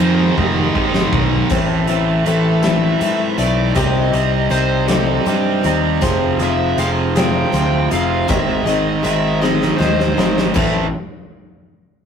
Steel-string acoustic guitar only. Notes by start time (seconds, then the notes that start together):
1.50 A2 E3 C4 E4 A4
1.87 C4 E4 A4
2.25 E3 C4 E4 A4
2.63 C4 E4 A4
3.00 E3 C4 E4 A4
3.38 C4 E4 A4
3.75 C3 G3 C4 D#4 G4
4.12 C4 D#4 G4
4.50 G3 C4 D#4 G4
4.88 C4 D#4 G4
5.25 G3 C4 D#4 G4
5.63 C4 D#4 G4
6.01 F3 C4 F4 G#4
6.39 C4 F4 G#4
6.78 F3 C4 F4 G#4
7.15 C4 F4 G#4
7.52 F3 C4 F4 G#4
7.91 C4 F4 G#4
8.28 G#2 D#3 G#3 C4 G#4
8.66 G#3 C4 G#4
9.03 G#3 C4 G#4
9.42 G#3 C4 D#4 G#4
9.78 G#3 C4 D#4 G#4
10.17 G#3 C4 D#4 G#4
10.54 A2 E3 C4 E4 A4